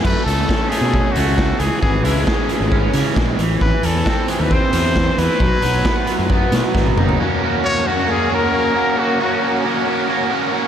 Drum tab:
CC |x---------------|----------------|----------------|----------------|
HH |--x---x---x---x-|--x---x---x---x-|--x---x---x---x-|--x---x---x-----|
SD |----o-------o---|----o-------o---|----o-------o---|----o-----o-o---|
T1 |----------------|----------------|----------------|-------------o--|
T2 |----------------|----------------|----------------|--------------o-|
FT |----------------|----------------|----------------|---------------o|
BD |o---o---o---o---|o---o---o---o---|o---o---o---o---|o---o---o---o---|

CC |----------------|----------------|
HH |----------------|----------------|
SD |----------------|----------------|
T1 |----------------|----------------|
T2 |----------------|----------------|
FT |----------------|----------------|
BD |----------------|----------------|